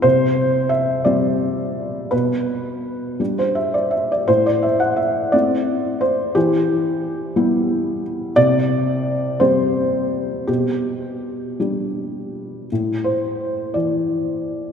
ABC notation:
X:1
M:6/8
L:1/16
Q:3/8=57
K:Gmix
V:1 name="Felt piano"
c4 e2 d6 | B6 z c e d e d | c d e ^f e2 d4 c2 | G8- G2 z2 |
d6 c6 | G8- G2 z2 | z2 c4 d6 |]
V:2 name="Felt piano" clef=bass
C,6 [G,CG]6 | B,,6 [G,DG]6 | A,,6 [A,CE]6 | E,6 [G,B,E]6 |
C,6 [G,CG]6 | B,,6 [G,DG]6 | A,,6 E,6 |]